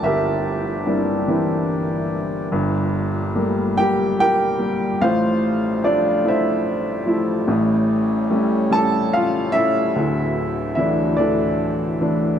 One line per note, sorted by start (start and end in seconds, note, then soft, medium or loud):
0.00 2.48 G1 medium
0.00 2.49 C2 medium
0.00 2.49 G2 medium
0.00 2.49 E3 medium
0.00 0.87 G3 soft
0.00 2.55 A3 soft
0.00 0.86 A#3 soft
0.00 0.87 C4 soft
0.00 0.87 D4 soft
0.00 2.49 D4 medium
0.00 0.87 E4 soft
0.00 2.49 G4 medium
0.00 2.55 D5 medium
0.00 0.04 E5 medium
0.00 2.07 E5 medium
0.00 2.54 G5 medium
0.00 2.55 A5 medium
0.06 2.08 G4 medium
0.06 2.08 A#4 medium
0.86 1.67 G3 soft
0.86 1.27 A#3 soft
0.86 1.27 C4 soft
0.86 1.27 D4 soft
0.86 1.27 E4 soft
1.28 2.09 E3 soft
1.28 2.09 A#3 soft
1.28 2.09 C4 soft
1.28 2.09 D4 soft
1.28 2.09 E4 medium
2.52 4.97 G1 medium
2.52 4.97 G2 medium
2.52 4.99 A#2 medium
2.52 9.92 G3 medium
3.35 3.75 G3 soft
3.35 4.16 A3 soft
3.35 3.76 A#3 soft
3.76 4.57 G3 soft
3.76 4.57 A#3 medium
3.76 4.17 G4 medium
3.76 4.19 G5 loud
4.20 4.99 G4 medium
4.20 4.99 A#4 medium
4.20 5.04 G5 loud
4.58 4.99 G3 soft
4.58 5.00 A#3 medium
5.01 7.45 A1 medium
5.01 7.45 A2 medium
5.01 12.39 A2 medium
5.01 7.47 F3 medium
5.01 5.80 F4 medium
5.01 5.81 C5 medium
5.01 5.86 F5 medium
5.83 6.22 F3 soft
5.83 6.23 A3 soft
5.83 6.23 D4 medium
5.83 6.24 E4 medium
5.83 6.27 D5 medium
6.24 7.04 F3 soft
6.24 7.05 A3 soft
6.24 6.27 E4 medium
6.28 7.06 E4 medium
6.28 7.15 C5 medium
6.28 7.15 E5 medium
7.06 7.47 F3 soft
7.06 7.47 A3 soft
7.06 7.47 E4 medium
7.47 9.92 A1 medium
7.47 9.91 A2 medium
7.47 9.93 C#4 medium
8.30 8.69 G3 medium
8.30 8.70 A3 soft
8.30 8.70 C#4 medium
8.70 9.51 G3 soft
8.70 9.52 A3 soft
8.70 9.52 C#4 medium
8.70 9.15 A5 loud
8.75 9.12 A4 medium
9.13 9.53 F4 medium
9.13 9.52 F5 medium
9.52 9.94 G3 soft
9.52 9.94 A3 soft
9.52 9.94 C#4 medium
9.52 10.75 E4 medium
9.52 10.75 A4 medium
9.52 10.74 E5 loud
9.96 12.39 D1 medium
9.96 12.39 D2 medium
9.96 12.39 E3 medium
10.75 11.17 E3 soft
10.75 11.18 A3 soft
10.75 11.17 D4 soft
10.75 11.19 E5 medium
10.79 11.17 E4 medium
11.17 12.00 E3 soft
11.17 12.00 A3 soft
11.17 12.00 D4 medium
11.17 12.09 A4 medium
11.17 12.07 D5 medium
12.01 12.39 E3 soft
12.01 12.39 A3 soft
12.01 12.39 D4 soft